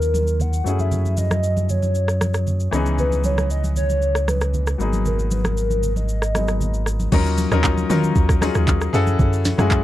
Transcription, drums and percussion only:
0.02 shaker
0.14 high conga, shaker
0.27 shaker
0.40 low conga, shaker
0.53 shaker
0.66 shaker
0.79 high conga, shaker
0.92 low conga, shaker
1.05 high conga, shaker
1.17 high conga, shaker
1.31 cross-stick, high conga, shaker
1.44 shaker
1.57 high conga, shaker
1.69 low conga, shaker
1.82 high conga, shaker
1.95 shaker
2.08 cross-stick, shaker
2.21 cross-stick, high conga, shaker
2.34 cross-stick, shaker
2.47 low conga, shaker
2.60 shaker
2.73 cross-stick, shaker
2.86 high conga, shaker
2.98 low conga, shaker
3.12 high conga, shaker
3.24 high conga, shaker
3.38 cross-stick, high conga, shaker
3.50 shaker
3.64 high conga, shaker
3.76 low conga, shaker
3.90 high conga, shaker
4.02 shaker
4.15 cross-stick, shaker
4.28 cross-stick, high conga, shaker
4.41 cross-stick, shaker
4.54 low conga, shaker
4.67 cross-stick, shaker
4.80 shaker
4.93 high conga, shaker
5.05 low conga, shaker
5.19 high conga, shaker
5.31 high conga, shaker
5.44 cross-stick, high conga, shaker
5.57 shaker
5.70 high conga, shaker
5.83 low conga, shaker
5.96 high conga, shaker
6.09 shaker
6.22 cross-stick, shaker
6.35 cross-stick, high conga, shaker
6.48 cross-stick, shaker
6.60 low conga, shaker
6.74 shaker
6.86 cross-stick, shaker
7.00 high conga, shaker
7.12 kick, crash, low conga, shaker
7.26 shaker
7.38 open hi-hat, high conga, shaker
7.51 cross-stick, high conga, shaker
7.64 kick, clap, shaker
7.77 high conga, shaker
7.90 open hi-hat, low conga, shaker
8.03 high conga, shaker
8.16 kick, shaker
8.29 kick, cross-stick, shaker
8.42 cross-stick, open hi-hat, high conga, shaker
8.55 cross-stick, shaker
8.67 kick, clap, low conga, shaker
8.81 cross-stick, shaker
8.94 open hi-hat, shaker
9.07 high conga, shaker
9.19 kick, low conga, shaker
9.33 shaker
9.45 snare, open hi-hat, high conga, shaker
9.58 cross-stick, high conga, shaker
9.71 kick, clap, shaker

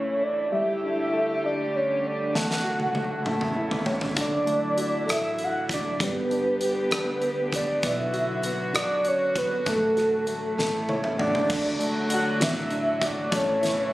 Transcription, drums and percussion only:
2.35 snare
2.51 snare
2.80 high tom
2.95 high tom
3.26 mid tom
3.41 mid tom
3.71 floor tom
3.86 floor tom
4.01 floor tom
4.17 kick, closed hi-hat
4.47 closed hi-hat
4.78 closed hi-hat
5.09 cross-stick, closed hi-hat
5.39 closed hi-hat
5.69 kick, closed hi-hat
6.00 kick, closed hi-hat
6.31 closed hi-hat
6.61 closed hi-hat
6.91 cross-stick, closed hi-hat
7.22 closed hi-hat
7.53 kick, closed hi-hat
7.83 kick, closed hi-hat
8.14 closed hi-hat
8.43 closed hi-hat
8.75 cross-stick, closed hi-hat
9.05 closed hi-hat
9.36 kick, closed hi-hat
9.66 kick, closed hi-hat
9.97 cross-stick, closed hi-hat
10.27 closed hi-hat
10.59 snare
10.89 high tom
11.04 mid tom
11.19 mid tom
11.35 floor tom
11.50 kick, crash
11.81 closed hi-hat
12.10 closed hi-hat
12.41 snare, closed hi-hat
12.70 closed hi-hat
13.02 kick, closed hi-hat
13.32 kick, closed hi-hat
13.63 snare, closed hi-hat

